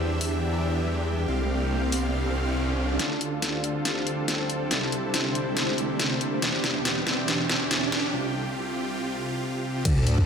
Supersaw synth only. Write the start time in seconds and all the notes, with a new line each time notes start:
Already playing: E3 D4 G4 E5
1.28 C3 C4 F5
2.99 D2 D3 F4 A4
4.71 C2 C3 E4
6.42 E2 B2 D4 G4
8.14 C2 C3 F4
9.85 D3 D5